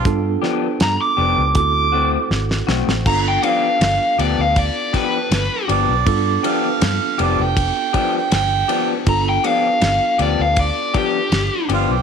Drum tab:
CC |----------------|x---------------|----------------|----------------|
RD |----------------|--x-x-x-x-x-x-x-|x-x-x-x-x-x-x-x-|x-x-x-x-x-x-x-x-|
HH |x---x---x-------|----------------|----------------|----------------|
SD |--o-o-------oooo|----o-----o-o---|----o-------o---|----o-------o---|
BD |o-------o-------|o-------o-o-----|o-------o-o-----|o-------o-o-----|